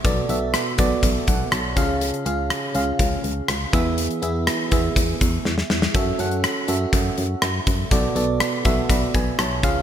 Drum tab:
HH |x-x-x-x-x-x-x-x-|xxx-x-x-x-x-x-x-|xxx-x-x-x-x-----|x-xxx-x-x-x-x-x-|
SD |----r-------r---|----r-------r---|----r-------oooo|----r-------r---|
BD |o-----o-o-o---o-|--------o-----o-|------o-o-o-----|o-------o-----o-|

HH |x-x-x-x-x-x-x-x-|
SD |----r-------r---|
BD |o-----o-o-o---o-|